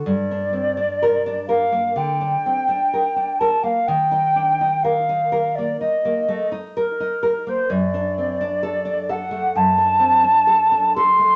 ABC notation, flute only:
X:1
M:4/4
L:1/16
Q:1/4=63
K:Gm
V:1 name="Flute"
d6 f2 g6 a f | g4 f3 d e3 z B3 c | d6 ^f2 a6 c'2 |]